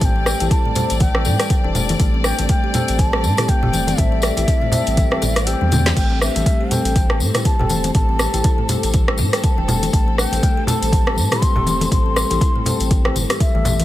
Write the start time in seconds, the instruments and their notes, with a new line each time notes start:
Already playing: string section G3 C4 D5
0.01 sub bass A1, tine electric piano C4 G4 A4, bansuri A5, kick, closed hi-hat, mid tom, tambourine
0.05 bansuri G5
0.16 kalimba C4
0.26 kalimba A4, cross-stick, tambourine
0.40 sub bass A1, tine electric piano C4 G4 A4, kalimba E4, closed hi-hat, tambourine, high conga
0.50 kalimba E4, bansuri A5, kick, closed hi-hat, tambourine
0.65 kalimba A3, mid tom
0.75 tine electric piano C4 G4 A4, closed hi-hat, tambourine, low conga
0.90 sub bass A1, closed hi-hat, tambourine
1.00 bansuri G5, kick, closed hi-hat, tambourine, high conga
1.15 tine electric piano C4 G4 A4, kalimba C4, cross-stick
1.25 sub bass A2, kalimba A4, mid tom, tambourine, high conga
1.39 tine electric piano C4 G4 A4, cross-stick, closed hi-hat, tambourine
1.50 kick, closed hi-hat
1.64 sub bass E1, tine electric piano C4 G4 A4, kalimba D4, high conga
1.75 kalimba A3, closed hi-hat, tambourine, low conga
1.89 closed hi-hat, tambourine, high conga
1.99 sub bass A1, kalimba A3, tine electric piano C4 G4 A4, kick, closed hi-hat, tambourine
2.14 kalimba C4
2.24 kalimba D4, bansuri G5, cross-stick, tambourine
2.39 sub bass A1, kalimba G3, tine electric piano C4 G4 A4, closed hi-hat, tambourine, high conga
2.49 kalimba A3, bansuri G5, kick, closed hi-hat, tambourine
2.64 kalimba G4
2.74 tine electric piano C4 G4 A4, closed hi-hat, tambourine, low conga
2.88 sub bass A1, closed hi-hat, tambourine
2.98 bansuri A5, kick, closed hi-hat, tambourine, high conga
3.13 kalimba C4, tine electric piano C4 G4 A4, cross-stick
3.23 sub bass A2, tambourine, high conga
3.37 tine electric piano C4 G4 A4, kalimba E4, cross-stick, closed hi-hat, mid tom, tambourine
3.48 kalimba A3, bansuri G5, kick, closed hi-hat, tambourine
3.63 sub bass E1, tine electric piano C4 G4 A4, kalimba G4, mid tom, low conga
3.73 kalimba A3, closed hi-hat, tambourine, high conga
3.87 closed hi-hat, tambourine, high conga
3.97 sub bass A1, tine electric piano C4 G4 A4, bansuri E5, kick, closed hi-hat, mid tom, tambourine
4.12 kalimba C4
4.22 kalimba A4, cross-stick, closed hi-hat, tambourine
4.37 sub bass A1, tine electric piano C4 G4 A4, kalimba E4, closed hi-hat, tambourine, high conga
4.48 kalimba E4, kick, closed hi-hat, tambourine
4.62 kalimba A3, mid tom
4.72 tine electric piano C4 G4 A4, closed hi-hat, tambourine, low conga
4.86 sub bass A1, closed hi-hat, tambourine
4.97 kick, closed hi-hat, tambourine, high conga
5.11 kalimba C4, tine electric piano C4 G4 A4, cross-stick
5.22 sub bass A1, kalimba A4, closed hi-hat, mid tom, tambourine, high conga
5.36 cross-stick, closed hi-hat, tambourine
5.47 tine electric piano C4 G4 A4, bansuri G5, closed hi-hat, tambourine
5.61 sub bass E2, kalimba D4, high tom, high conga
5.72 kalimba A3, closed hi-hat, mid tom, tambourine, low conga
5.86 tine electric piano C4 G4 C5, snare, closed hi-hat, tambourine, high conga
5.96 sub bass A1, kalimba A3, tine electric piano C4 G4 A4, string section A4, bansuri G5, kick, closed hi-hat, tambourine, crash
6.11 kalimba C4
6.21 kalimba D4, bansuri E5, cross-stick, tambourine
6.36 sub bass A1, kalimba G3, tine electric piano C4 G4 A4, closed hi-hat, tambourine, high conga
6.46 kalimba A3, kick, closed hi-hat, tambourine
6.61 kalimba G4
6.71 tine electric piano C4 G4 A4, bansuri G5, closed hi-hat, tambourine, low conga
6.85 sub bass A1, closed hi-hat, tambourine
6.95 kick, closed hi-hat, tambourine, high conga
7.10 tine electric piano C4 G4 A4, kalimba C4, cross-stick
7.20 sub bass A2, tambourine, high conga
7.34 tine electric piano C4 G4 A4, kalimba E4, cross-stick, closed hi-hat, mid tom, tambourine
7.45 kalimba G3, bansuri A5, kick, closed hi-hat
7.59 sub bass E1, tine electric piano C4 G4 A4, kalimba G4, mid tom, low conga
7.69 kalimba A3, closed hi-hat, tambourine, high conga
7.84 closed hi-hat, tambourine, high conga
7.94 sub bass A1, tine electric piano C4 G4 A4, bansuri A5, kick, closed hi-hat, mid tom, tambourine
8.09 kalimba C4
8.19 kalimba A4, cross-stick, tambourine
8.34 sub bass A1, tine electric piano C4 G4 A4, kalimba E4, closed hi-hat, tambourine, high conga
8.44 kalimba E4, kick, closed hi-hat, tambourine
8.58 kalimba A3, mid tom
8.69 tine electric piano C4 G4 A4, closed hi-hat, tambourine, low conga
8.83 sub bass A1, closed hi-hat, tambourine
8.93 kick, closed hi-hat, tambourine, high conga
9.08 tine electric piano C4 G4 A4, kalimba C4, cross-stick
9.18 sub bass A2, kalimba A4, mid tom, tambourine, high conga
9.33 tine electric piano C4 G4 A4, cross-stick, closed hi-hat, tambourine
9.43 bansuri A5, kick, closed hi-hat, tambourine
9.58 sub bass E1, tine electric piano C4 G4 A4, kalimba D4, high conga
9.68 kalimba A3, closed hi-hat, tambourine, low conga
9.83 closed hi-hat, tambourine, high conga
9.93 sub bass A1, kalimba A3, tine electric piano C4 G4 A4, bansuri A5, kick, closed hi-hat, tambourine
10.08 kalimba C4
10.18 kalimba D4, bansuri G5, cross-stick, tambourine
10.32 sub bass A1, kalimba G3, tine electric piano C4 G4 A4, closed hi-hat, tambourine, high conga
10.43 kalimba A3, kick, closed hi-hat, tambourine
10.57 kalimba G4
10.67 tine electric piano C4 G4 A4, bansuri A5, closed hi-hat, tambourine, low conga
10.82 sub bass A1, closed hi-hat, tambourine
10.92 kick, closed hi-hat, high conga
11.07 tine electric piano C4 G4 A4, kalimba C4, cross-stick
11.16 sub bass A2, tambourine, high conga
11.31 tine electric piano C4 G4 A4, kalimba E4, cross-stick, closed hi-hat, mid tom, tambourine
11.42 kalimba G3, bansuri C6, kick, closed hi-hat, tambourine
11.56 sub bass E1, tine electric piano C4 G4 A4, kalimba G4, mid tom, low conga
11.66 kalimba A3, closed hi-hat, tambourine, high conga
11.81 closed hi-hat, tambourine, high conga
11.92 sub bass A1, tine electric piano C4 G4 A4, bansuri C6, kick, closed hi-hat, mid tom, tambourine
12.06 kalimba C4
12.16 kalimba A4, cross-stick, tambourine
12.30 sub bass A1, tine electric piano C4 G4 A4, kalimba E4, closed hi-hat, tambourine, high conga
12.41 kalimba E4, kick, closed hi-hat, tambourine
12.56 kalimba A3, mid tom
12.66 tine electric piano C4 G4 A4, closed hi-hat, tambourine, low conga
12.80 sub bass A1, closed hi-hat, tambourine
12.91 kick, closed hi-hat, tambourine, high conga
13.05 tine electric piano C4 G4 A4, kalimba C4, cross-stick
13.16 sub bass G1, kalimba G3, closed hi-hat, mid tom, tambourine, high conga
13.30 tine electric piano C4 G4 A4, cross-stick, closed hi-hat, tambourine
13.40 bansuri E5, kick, closed hi-hat, tambourine
13.55 sub bass A1, kalimba A3, tine electric piano C4 G4 A4, high conga
13.65 kalimba E3, closed hi-hat, tambourine, low conga
13.79 closed hi-hat, tambourine, high conga